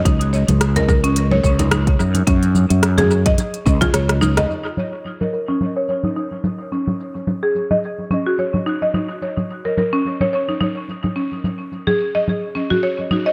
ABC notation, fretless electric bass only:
X:1
M:4/4
L:1/16
Q:"Swing 16ths" 1/4=108
K:Ebm
V:1 name="Fretless electric bass" clef=bass
D,,3 D,,6- D,, D,,4 G,, z | G,,3 G,,4- G,, z2 D,, z D,,4 | z16 | z16 |
z16 | z16 |]